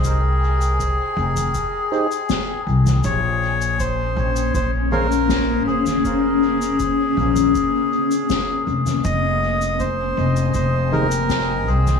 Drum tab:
SH |x--xx--xx--xx--x|x--xx--xx--xx--x|x--xx--xx--xx--x|x--xx--xx--xx--x|
SD |------------o---|------------o---|------------o---|------------o---|
T2 |-------o-------o|----------o----o|-------o-------o|----------o----o|
BD |o---o---o---o---|o---o---o---o---|o---o---o---o---|o---o---o---o---|